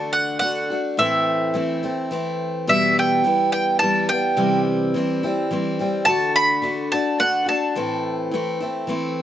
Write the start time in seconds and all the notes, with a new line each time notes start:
Already playing: D3 A3 D4 F#4 A5
0.13 F#5
0.39 D3 A3 D4 F#4 F#5
0.70 A3 D4 F#4
0.97 A2 E3 A3 C4 E4 E5
1.54 E3 A3 C4 E4
1.83 A3 C4 E4
2.11 E3 A3 C4 E4
2.67 B2 E3 G3 B3 E4 E5
2.99 G5
3.24 E3 G3 B3 E4
3.52 G5
3.79 E3 G3 B3 A5
3.84 E4
4.09 G3 B3 E4 G5
4.37 C3 E3 G3 C4 E4
4.94 E3 G3 C4 E4
5.23 G3 C4 E4
5.51 E3 G3 C4 E4
5.79 G3 C4 E4
6.05 D3 A3 D4 F#4 A5
6.36 B5
6.62 D3 A3 D4 F#4
6.92 A3 D4 F#4 A5
7.19 D3 A3 D4 F#4 F#5
7.46 A3 D4 F#4 A5
7.75 A2 E3 A3 C4 E4
8.31 E3 A3 C4 E4
8.60 A3 C4 E4
8.87 E3 A3 C4 E4